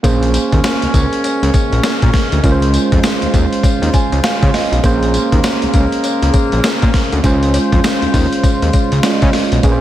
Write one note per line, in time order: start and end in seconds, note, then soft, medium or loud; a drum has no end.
0.03 0.38 A#1 loud
0.03 4.80 G#3 medium
0.03 2.39 A#3 medium
0.03 2.42 A#3 medium
0.03 2.40 C#4 medium
0.03 2.42 C#4 medium
0.03 2.40 G#4 medium
0.03 2.41 C5 medium
0.03 kick loud
0.03 closed hi-hat medium
0.03 tambourine medium
0.03 cowbell medium
0.23 closed hi-hat medium
0.34 closed hi-hat medium
0.34 tambourine medium
0.52 0.60 D#2 medium
0.52 kick loud
0.52 closed hi-hat medium
0.64 snare loud
0.64 closed hi-hat medium
0.64 tambourine medium
0.64 cowbell medium
0.82 0.87 C#2 soft
0.82 closed hi-hat medium
0.94 1.07 C#2 medium
0.94 kick medium
0.94 closed hi-hat medium
0.94 tambourine medium
1.13 closed hi-hat soft
1.24 closed hi-hat medium
1.24 tambourine medium
1.24 cowbell medium
1.43 1.50 C#2 loud
1.43 closed hi-hat medium
1.54 kick medium
1.54 closed hi-hat medium
1.54 tambourine medium
1.54 cowbell medium
1.72 1.80 A#1 medium
1.72 closed hi-hat soft
1.84 snare loud
1.84 closed hi-hat medium
1.84 tambourine medium
1.84 cowbell medium
2.02 2.11 A#2 loud
2.02 kick loud
2.02 closed hi-hat medium
2.14 kick medium
2.14 snare medium
2.14 open hi-hat medium
2.32 2.40 D2 medium
2.32 closed hi-hat medium
2.43 2.78 C#2 loud
2.43 9.81 C#3 medium
2.43 4.79 G#3 medium
2.43 4.80 C#4 medium
2.43 4.81 F4 medium
2.43 4.80 F4 medium
2.43 2.53 A#4 medium
2.43 4.81 C5 medium
2.43 kick loud
2.43 closed hi-hat medium
2.43 tambourine medium
2.43 cowbell medium
2.52 4.84 C5 medium
2.62 closed hi-hat medium
2.74 closed hi-hat medium
2.74 tambourine medium
2.92 3.00 F2 loud
2.92 kick loud
2.92 closed hi-hat medium
3.03 snare loud
3.03 closed hi-hat medium
3.03 tambourine medium
3.03 cowbell medium
3.22 3.27 D#2 soft
3.22 closed hi-hat soft
3.34 3.47 D#2 medium
3.34 kick medium
3.34 closed hi-hat medium
3.34 tambourine medium
3.53 closed hi-hat soft
3.63 kick loud
3.63 closed hi-hat medium
3.63 tambourine medium
3.63 cowbell medium
3.82 3.90 D#2 medium
3.82 closed hi-hat medium
3.93 4.22 G#5 medium
3.93 kick medium
3.93 closed hi-hat medium
3.93 tambourine medium
3.93 cowbell medium
4.12 4.20 C#2 medium
4.12 closed hi-hat medium
4.23 4.52 F5 medium
4.23 snare loud
4.23 closed hi-hat medium
4.23 tambourine medium
4.23 cowbell medium
4.43 4.51 C#3 loud
4.43 kick loud
4.43 closed hi-hat medium
4.54 4.82 D#5 medium
4.54 snare medium
4.54 open hi-hat medium
4.72 4.80 B1 medium
4.72 closed hi-hat medium
4.83 5.18 A#1 loud
4.83 7.22 G#3 medium
4.83 7.19 A#3 medium
4.83 7.22 A#3 medium
4.83 7.20 C#4 medium
4.83 7.20 G#4 medium
4.83 7.21 C5 medium
4.83 kick loud
4.83 closed hi-hat medium
4.83 tambourine medium
4.83 cowbell medium
5.03 closed hi-hat medium
5.14 closed hi-hat medium
5.14 tambourine medium
5.32 5.40 D#2 medium
5.32 kick loud
5.32 closed hi-hat medium
5.44 snare loud
5.44 closed hi-hat medium
5.44 tambourine medium
5.44 cowbell medium
5.62 5.67 C#2 medium
5.62 closed hi-hat soft
5.74 5.87 C#2 medium
5.74 kick medium
5.74 closed hi-hat medium
5.74 tambourine medium
5.92 closed hi-hat medium
6.04 closed hi-hat medium
6.04 tambourine medium
6.04 cowbell medium
6.22 6.30 C#2 medium
6.22 closed hi-hat medium
6.33 kick loud
6.33 closed hi-hat medium
6.33 tambourine medium
6.33 cowbell medium
6.52 6.60 A#1 medium
6.52 closed hi-hat medium
6.64 snare loud
6.64 closed hi-hat medium
6.64 tambourine loud
6.64 cowbell medium
6.82 6.91 A#2 loud
6.82 kick loud
6.82 closed hi-hat medium
6.94 kick medium
6.94 snare medium
6.94 open hi-hat medium
7.12 7.20 D2 medium
7.12 closed hi-hat medium
7.23 7.58 C#2 loud
7.23 9.00 G#3 medium
7.23 9.81 G#3 medium
7.23 9.00 C#4 medium
7.23 9.62 F4 medium
7.23 9.01 F4 medium
7.23 9.62 C5 medium
7.23 9.01 C5 medium
7.23 kick loud
7.23 closed hi-hat medium
7.23 tambourine medium
7.23 cowbell medium
7.43 closed hi-hat medium
7.54 closed hi-hat medium
7.54 tambourine medium
7.54 cowbell medium
7.72 7.81 F2 loud
7.72 kick loud
7.72 closed hi-hat medium
7.84 snare loud
7.84 closed hi-hat medium
7.84 tambourine loud
7.84 cowbell medium
8.02 8.07 D#2 soft
8.02 closed hi-hat soft
8.14 8.27 D#2 medium
8.14 kick medium
8.14 open hi-hat medium
8.14 tambourine medium
8.33 closed hi-hat medium
8.44 kick loud
8.44 closed hi-hat medium
8.44 tambourine medium
8.44 cowbell medium
8.62 8.70 D#2 medium
8.62 closed hi-hat medium
8.73 kick medium
8.73 closed hi-hat medium
8.73 tambourine medium
8.73 cowbell medium
8.92 9.00 C#2 medium
8.92 closed hi-hat medium
9.03 9.64 G#3 medium
9.03 9.63 C#4 medium
9.03 9.64 F4 medium
9.03 9.12 D5 medium
9.03 snare loud
9.03 closed hi-hat medium
9.03 tambourine medium
9.03 cowbell medium
9.11 9.68 D#5 medium
9.22 9.30 C#3 loud
9.22 kick medium
9.22 closed hi-hat medium
9.33 snare medium
9.33 open hi-hat medium
9.52 9.60 B1 medium
9.52 closed hi-hat medium
9.63 9.81 A#1 loud
9.63 9.81 A#3 medium
9.63 9.81 C#4 medium
9.63 9.81 G#4 medium
9.63 9.73 B4 medium
9.63 kick loud
9.63 closed hi-hat medium
9.63 tambourine medium
9.63 cowbell medium
9.72 9.81 C5 medium